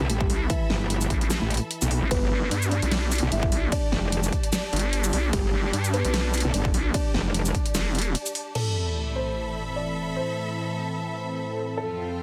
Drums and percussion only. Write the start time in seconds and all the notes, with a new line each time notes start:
0.10 closed hi-hat
0.21 kick
0.30 open hi-hat
0.50 kick, closed hi-hat
0.70 snare
0.90 closed hi-hat
1.01 shaker
1.10 kick, closed hi-hat
1.21 closed hi-hat
1.30 snare, closed hi-hat, shaker
1.50 closed hi-hat
1.54 closed hi-hat
1.57 closed hi-hat
1.71 closed hi-hat
1.82 shaker
1.91 open hi-hat
2.11 kick, closed hi-hat, ride
2.51 closed hi-hat, ride
2.62 shaker
2.71 closed hi-hat
2.82 closed hi-hat
2.91 snare, closed hi-hat, ride
3.12 closed hi-hat, shaker
3.15 closed hi-hat
3.18 closed hi-hat
3.32 closed hi-hat, ride
3.43 kick
3.52 open hi-hat
3.72 kick, closed hi-hat, ride
3.92 snare
4.12 closed hi-hat, ride
4.23 shaker
4.32 kick, closed hi-hat
4.43 closed hi-hat
4.53 snare, closed hi-hat, ride, shaker
4.73 closed hi-hat
4.76 closed hi-hat
4.79 closed hi-hat
4.93 closed hi-hat, ride
5.04 shaker
5.13 open hi-hat
5.33 kick, closed hi-hat, ride
5.73 closed hi-hat, ride
5.84 shaker
5.94 closed hi-hat
6.05 closed hi-hat
6.14 snare, closed hi-hat, ride
6.34 closed hi-hat, shaker
6.37 closed hi-hat
6.40 closed hi-hat
6.54 closed hi-hat, ride
6.65 kick
6.74 open hi-hat
6.94 kick, closed hi-hat, ride
7.14 snare
7.34 closed hi-hat, ride
7.45 shaker
7.55 kick, closed hi-hat
7.66 closed hi-hat
7.75 snare, closed hi-hat, ride, shaker
7.95 closed hi-hat
7.99 closed hi-hat
8.02 closed hi-hat
8.15 closed hi-hat, ride
8.26 closed hi-hat, shaker
8.35 open hi-hat
8.55 crash